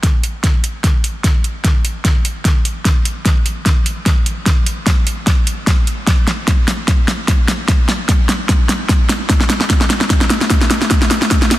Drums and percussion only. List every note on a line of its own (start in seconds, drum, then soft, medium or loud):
0.03 kick loud
0.03 snare soft
0.03 closed hi-hat medium
0.23 closed hi-hat medium
0.44 kick medium
0.44 snare soft
0.44 closed hi-hat medium
0.64 closed hi-hat medium
0.84 kick medium
0.84 snare soft
0.84 closed hi-hat medium
1.04 closed hi-hat medium
1.24 kick loud
1.24 snare medium
1.24 closed hi-hat medium
1.44 closed hi-hat medium
1.64 kick loud
1.64 snare medium
1.64 closed hi-hat medium
1.85 closed hi-hat medium
2.05 kick medium
2.05 snare medium
2.05 closed hi-hat medium
2.25 closed hi-hat medium
2.45 kick loud
2.45 snare medium
2.45 closed hi-hat medium
2.65 closed hi-hat medium
2.85 kick medium
2.85 snare medium
2.85 closed hi-hat medium
3.05 closed hi-hat medium
3.26 kick loud
3.26 snare medium
3.26 closed hi-hat medium
3.46 closed hi-hat medium
3.66 kick medium
3.66 snare medium
3.66 closed hi-hat medium
3.86 closed hi-hat medium
4.06 kick loud
4.06 snare medium
4.06 closed hi-hat medium
4.26 closed hi-hat medium
4.46 kick loud
4.46 snare medium
4.46 closed hi-hat medium
4.66 closed hi-hat medium
4.87 kick medium
4.87 snare medium
4.87 closed hi-hat medium
5.07 closed hi-hat medium
5.27 kick loud
5.27 snare medium
5.27 closed hi-hat medium
5.47 closed hi-hat medium
5.67 kick loud
5.67 snare medium
5.67 closed hi-hat medium
5.87 closed hi-hat medium
6.07 kick loud
6.07 snare medium
6.07 closed hi-hat medium
6.27 snare medium
6.27 closed hi-hat medium
6.48 kick loud
6.48 snare medium
6.48 closed hi-hat medium
6.68 snare medium
6.68 closed hi-hat medium
6.88 kick loud
6.88 snare medium
6.88 closed hi-hat medium
7.08 snare medium
7.08 closed hi-hat medium
7.28 kick loud
7.28 snare medium
7.28 closed hi-hat medium
7.48 snare medium
7.48 closed hi-hat medium
7.68 kick loud
7.68 snare medium
7.68 closed hi-hat medium
7.89 snare medium
7.89 closed hi-hat medium
8.09 kick loud
8.09 snare medium
8.09 closed hi-hat medium
8.29 snare medium
8.29 closed hi-hat medium
8.49 kick loud
8.49 snare medium
8.49 closed hi-hat medium
8.69 snare medium
8.69 closed hi-hat medium
8.89 kick loud
8.89 snare medium
8.89 closed hi-hat medium
9.09 snare medium
9.09 closed hi-hat medium
9.30 kick loud
9.30 snare medium
9.30 closed hi-hat medium
9.41 snare medium
9.50 snare medium
9.50 closed hi-hat medium
9.61 snare medium
9.70 kick loud
9.70 snare loud
9.70 closed hi-hat medium
9.81 snare medium
9.90 snare medium
9.90 closed hi-hat medium
10.01 snare medium
10.10 kick loud
10.10 snare medium
10.10 closed hi-hat medium
10.21 snare medium
10.30 snare loud
10.30 closed hi-hat medium
10.41 snare medium
10.50 kick loud
10.50 snare loud
10.50 closed hi-hat medium
10.61 snare medium
10.71 snare loud
10.71 closed hi-hat medium
10.82 snare medium
10.91 kick loud
10.91 snare loud
10.91 closed hi-hat medium
11.02 snare medium
11.11 snare loud
11.11 closed hi-hat medium
11.22 snare medium
11.31 kick loud
11.31 snare loud
11.31 closed hi-hat medium
11.42 snare medium
11.51 snare loud
11.51 closed hi-hat medium